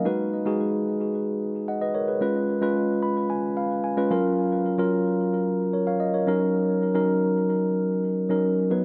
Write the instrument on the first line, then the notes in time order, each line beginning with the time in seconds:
tine electric piano
0.05 G#3 D#4 F#4 B4
0.46 G#3 D#4 F#4 G#4
1.68 D#5 F#5
1.81 B4 D#5
1.95 A#4 C#5
2.08 G#4 B4
2.21 G#3 C#4 F4 B4
2.61 G#3 C#4 F4 B4
3.03 B5
3.30 G#5
3.57 F5
3.84 G#5
3.97 G#3 C#4 F4 B4
4.10 F#3 C#4 F4 A#4 F5
4.78 F#3 C#4 F4 A#4
5.73 A#4 C#5
5.87 C#5 F5
6.00 D#5
6.14 A#4 C#5
6.27 F#3 C#4 D#4 A#4
6.94 F#3 C#4 D#4 A#4
8.29 F#3 C#4 D#4 A#4
8.70 F#3 B3 D#4 B4